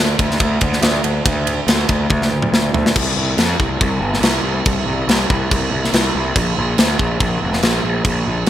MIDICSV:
0, 0, Header, 1, 3, 480
1, 0, Start_track
1, 0, Tempo, 424628
1, 1419, Time_signature, 4, 2, 24, 8
1, 9604, End_track
2, 0, Start_track
2, 0, Title_t, "Picked electric bass"
2, 0, Program_c, 0, 34
2, 0, Note_on_c, 0, 38, 90
2, 158, Note_off_c, 0, 38, 0
2, 214, Note_on_c, 0, 38, 98
2, 405, Note_off_c, 0, 38, 0
2, 451, Note_on_c, 0, 38, 94
2, 643, Note_off_c, 0, 38, 0
2, 697, Note_on_c, 0, 38, 91
2, 886, Note_off_c, 0, 38, 0
2, 925, Note_on_c, 0, 38, 98
2, 1119, Note_off_c, 0, 38, 0
2, 1172, Note_on_c, 0, 38, 88
2, 1364, Note_off_c, 0, 38, 0
2, 1418, Note_on_c, 0, 38, 101
2, 1797, Note_off_c, 0, 38, 0
2, 1884, Note_on_c, 0, 38, 88
2, 2079, Note_off_c, 0, 38, 0
2, 2137, Note_on_c, 0, 38, 97
2, 2327, Note_off_c, 0, 38, 0
2, 2377, Note_on_c, 0, 38, 90
2, 2567, Note_off_c, 0, 38, 0
2, 2612, Note_on_c, 0, 38, 83
2, 2804, Note_off_c, 0, 38, 0
2, 2847, Note_on_c, 0, 38, 94
2, 3041, Note_off_c, 0, 38, 0
2, 3091, Note_on_c, 0, 38, 90
2, 3283, Note_off_c, 0, 38, 0
2, 3344, Note_on_c, 0, 36, 103
2, 3536, Note_off_c, 0, 36, 0
2, 3573, Note_on_c, 0, 36, 87
2, 3770, Note_off_c, 0, 36, 0
2, 3813, Note_on_c, 0, 41, 89
2, 4010, Note_off_c, 0, 41, 0
2, 4061, Note_on_c, 0, 36, 96
2, 4255, Note_off_c, 0, 36, 0
2, 4306, Note_on_c, 0, 36, 100
2, 4498, Note_off_c, 0, 36, 0
2, 4519, Note_on_c, 0, 31, 99
2, 4721, Note_off_c, 0, 31, 0
2, 4754, Note_on_c, 0, 36, 98
2, 4958, Note_off_c, 0, 36, 0
2, 5004, Note_on_c, 0, 36, 89
2, 5204, Note_off_c, 0, 36, 0
2, 5265, Note_on_c, 0, 36, 102
2, 5457, Note_off_c, 0, 36, 0
2, 5492, Note_on_c, 0, 36, 83
2, 5689, Note_off_c, 0, 36, 0
2, 5735, Note_on_c, 0, 36, 94
2, 5930, Note_off_c, 0, 36, 0
2, 5990, Note_on_c, 0, 36, 104
2, 6179, Note_off_c, 0, 36, 0
2, 6228, Note_on_c, 0, 36, 102
2, 6418, Note_off_c, 0, 36, 0
2, 6458, Note_on_c, 0, 36, 92
2, 6652, Note_off_c, 0, 36, 0
2, 6700, Note_on_c, 0, 36, 96
2, 6893, Note_off_c, 0, 36, 0
2, 6950, Note_on_c, 0, 36, 92
2, 7139, Note_off_c, 0, 36, 0
2, 7188, Note_on_c, 0, 34, 112
2, 7378, Note_off_c, 0, 34, 0
2, 7441, Note_on_c, 0, 34, 97
2, 7625, Note_off_c, 0, 34, 0
2, 7664, Note_on_c, 0, 38, 97
2, 7855, Note_off_c, 0, 38, 0
2, 7900, Note_on_c, 0, 34, 100
2, 8092, Note_off_c, 0, 34, 0
2, 8140, Note_on_c, 0, 34, 94
2, 8333, Note_off_c, 0, 34, 0
2, 8387, Note_on_c, 0, 29, 84
2, 8576, Note_off_c, 0, 29, 0
2, 8619, Note_on_c, 0, 34, 103
2, 8812, Note_off_c, 0, 34, 0
2, 8860, Note_on_c, 0, 34, 93
2, 9052, Note_off_c, 0, 34, 0
2, 9095, Note_on_c, 0, 34, 102
2, 9289, Note_off_c, 0, 34, 0
2, 9341, Note_on_c, 0, 34, 88
2, 9532, Note_off_c, 0, 34, 0
2, 9604, End_track
3, 0, Start_track
3, 0, Title_t, "Drums"
3, 215, Note_on_c, 9, 51, 69
3, 217, Note_on_c, 9, 36, 77
3, 328, Note_off_c, 9, 51, 0
3, 330, Note_off_c, 9, 36, 0
3, 349, Note_on_c, 9, 38, 33
3, 451, Note_on_c, 9, 51, 95
3, 455, Note_on_c, 9, 36, 104
3, 462, Note_off_c, 9, 38, 0
3, 564, Note_off_c, 9, 51, 0
3, 568, Note_off_c, 9, 36, 0
3, 689, Note_on_c, 9, 51, 80
3, 696, Note_on_c, 9, 36, 91
3, 802, Note_off_c, 9, 51, 0
3, 809, Note_off_c, 9, 36, 0
3, 824, Note_on_c, 9, 38, 35
3, 932, Note_on_c, 9, 51, 97
3, 937, Note_off_c, 9, 38, 0
3, 942, Note_on_c, 9, 38, 118
3, 1045, Note_off_c, 9, 51, 0
3, 1055, Note_off_c, 9, 38, 0
3, 1175, Note_on_c, 9, 51, 70
3, 1288, Note_off_c, 9, 51, 0
3, 1419, Note_on_c, 9, 36, 122
3, 1422, Note_on_c, 9, 51, 102
3, 1532, Note_off_c, 9, 36, 0
3, 1535, Note_off_c, 9, 51, 0
3, 1661, Note_on_c, 9, 51, 74
3, 1775, Note_off_c, 9, 51, 0
3, 1899, Note_on_c, 9, 51, 104
3, 1909, Note_on_c, 9, 38, 113
3, 2012, Note_off_c, 9, 51, 0
3, 2022, Note_off_c, 9, 38, 0
3, 2133, Note_on_c, 9, 51, 72
3, 2138, Note_on_c, 9, 36, 78
3, 2246, Note_off_c, 9, 51, 0
3, 2251, Note_off_c, 9, 36, 0
3, 2371, Note_on_c, 9, 48, 67
3, 2378, Note_on_c, 9, 36, 111
3, 2484, Note_off_c, 9, 48, 0
3, 2491, Note_off_c, 9, 36, 0
3, 2512, Note_on_c, 9, 38, 61
3, 2625, Note_off_c, 9, 38, 0
3, 2741, Note_on_c, 9, 47, 78
3, 2854, Note_off_c, 9, 47, 0
3, 2867, Note_on_c, 9, 38, 95
3, 2980, Note_off_c, 9, 38, 0
3, 3102, Note_on_c, 9, 43, 108
3, 3215, Note_off_c, 9, 43, 0
3, 3235, Note_on_c, 9, 38, 87
3, 3344, Note_on_c, 9, 36, 115
3, 3345, Note_on_c, 9, 49, 127
3, 3345, Note_on_c, 9, 57, 64
3, 3348, Note_off_c, 9, 38, 0
3, 3457, Note_off_c, 9, 36, 0
3, 3458, Note_off_c, 9, 49, 0
3, 3458, Note_off_c, 9, 57, 0
3, 3820, Note_on_c, 9, 57, 62
3, 3830, Note_on_c, 9, 38, 113
3, 3933, Note_off_c, 9, 57, 0
3, 3943, Note_off_c, 9, 38, 0
3, 4066, Note_on_c, 9, 36, 76
3, 4179, Note_off_c, 9, 36, 0
3, 4303, Note_on_c, 9, 57, 60
3, 4306, Note_on_c, 9, 36, 120
3, 4416, Note_off_c, 9, 57, 0
3, 4419, Note_off_c, 9, 36, 0
3, 4677, Note_on_c, 9, 38, 35
3, 4780, Note_on_c, 9, 57, 68
3, 4790, Note_off_c, 9, 38, 0
3, 4790, Note_on_c, 9, 38, 123
3, 4893, Note_off_c, 9, 57, 0
3, 4903, Note_off_c, 9, 38, 0
3, 5262, Note_on_c, 9, 57, 68
3, 5268, Note_on_c, 9, 36, 127
3, 5375, Note_off_c, 9, 57, 0
3, 5381, Note_off_c, 9, 36, 0
3, 5750, Note_on_c, 9, 57, 70
3, 5761, Note_on_c, 9, 38, 111
3, 5863, Note_off_c, 9, 57, 0
3, 5874, Note_off_c, 9, 38, 0
3, 5992, Note_on_c, 9, 36, 85
3, 6105, Note_off_c, 9, 36, 0
3, 6233, Note_on_c, 9, 36, 109
3, 6234, Note_on_c, 9, 57, 75
3, 6346, Note_off_c, 9, 36, 0
3, 6347, Note_off_c, 9, 57, 0
3, 6607, Note_on_c, 9, 38, 36
3, 6709, Note_on_c, 9, 57, 70
3, 6720, Note_off_c, 9, 38, 0
3, 6720, Note_on_c, 9, 38, 122
3, 6822, Note_off_c, 9, 57, 0
3, 6833, Note_off_c, 9, 38, 0
3, 7187, Note_on_c, 9, 36, 116
3, 7187, Note_on_c, 9, 57, 72
3, 7300, Note_off_c, 9, 36, 0
3, 7300, Note_off_c, 9, 57, 0
3, 7664, Note_on_c, 9, 57, 62
3, 7674, Note_on_c, 9, 38, 113
3, 7777, Note_off_c, 9, 57, 0
3, 7787, Note_off_c, 9, 38, 0
3, 7906, Note_on_c, 9, 36, 80
3, 8019, Note_off_c, 9, 36, 0
3, 8144, Note_on_c, 9, 36, 114
3, 8145, Note_on_c, 9, 57, 60
3, 8257, Note_off_c, 9, 36, 0
3, 8258, Note_off_c, 9, 57, 0
3, 8514, Note_on_c, 9, 38, 35
3, 8621, Note_on_c, 9, 57, 63
3, 8627, Note_off_c, 9, 38, 0
3, 8631, Note_on_c, 9, 38, 120
3, 8734, Note_off_c, 9, 57, 0
3, 8744, Note_off_c, 9, 38, 0
3, 9097, Note_on_c, 9, 36, 113
3, 9101, Note_on_c, 9, 57, 70
3, 9211, Note_off_c, 9, 36, 0
3, 9214, Note_off_c, 9, 57, 0
3, 9567, Note_on_c, 9, 57, 62
3, 9604, Note_off_c, 9, 57, 0
3, 9604, End_track
0, 0, End_of_file